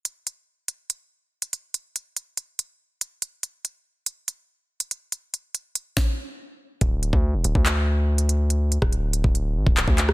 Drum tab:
HH |x-x---x-x----xx-|x-x-x-x-x---x-x-|x-x---x-x----xx-|x-x-x-x---------|
CP |----------------|----------------|----------------|----------------|
SD |----------------|----------------|----------------|--------o-------|
BD |----------------|----------------|----------------|--------o-------|

HH |x-x---x-x----xx-|x-x-x-x-x---x-x-|
CP |--------x-------|------------x-x-|
SD |----------------|---r-----------r|
BD |o--o---o--------|---o---o---o-o--|